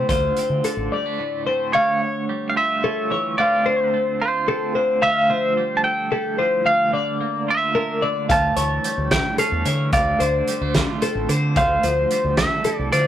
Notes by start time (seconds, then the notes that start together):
Already playing: D3 F4
0.09 D2 F4 C5, kick, closed hi-hat
0.37 C4, closed hi-hat
0.50 D3
0.64 D3 A4, closed hi-hat
0.77 A1
0.92 G3 D5
1.06 A3
1.19 A2
1.47 C4 C5
1.73 D2 C#5 F5
2.02 C#5
2.29 G3
2.50 F5
2.56 F4 E5
2.84 C#4 A4
3.11 E3 C#5
3.38 D2 D3 A3 C4 F4 D5 F5
3.65 D3 C5
3.94 A3
4.22 F4 C5
4.48 C4 A4
4.75 D3 C5
5.02 D2 E5 F5
5.30 F3 C5
5.57 G3
5.77 A5
5.84 A4 G5
6.12 E4 A4
6.38 F3 C5
6.65 D2 F5
6.93 D3 D5
7.21 A#3
7.48 F4 E5
7.75 D4 A#4
8.02 D3 D5
8.29 D2 F5 A5, kick, closed hi-hat
8.56 D2 E3 C#5, closed hi-hat
8.84 G3, closed hi-hat
8.98 D2
9.11 G5, kick, snare, closed hi-hat
9.38 C#4 A4 F5, closed hi-hat
9.52 E2
9.65 D3 E3 C#5, closed hi-hat
9.93 D2 D5 F5, kick, closed hi-hat
10.20 D2 D3 C5, closed hi-hat
10.48 G3, closed hi-hat
10.61 D2 A3
10.75 F4, kick, snare, closed hi-hat
11.02 C4 A4, closed hi-hat
11.15 A1
11.29 D3 C5, closed hi-hat
11.56 D2 C5 F5, kick, closed hi-hat
11.83 D2 F3 C5, closed hi-hat
12.11 G3, closed hi-hat
12.24 D2
12.37 A4 E5, kick, snare, closed hi-hat
12.64 E4 A4, closed hi-hat
12.79 C2
12.92 D3 F3 C5 D5, closed hi-hat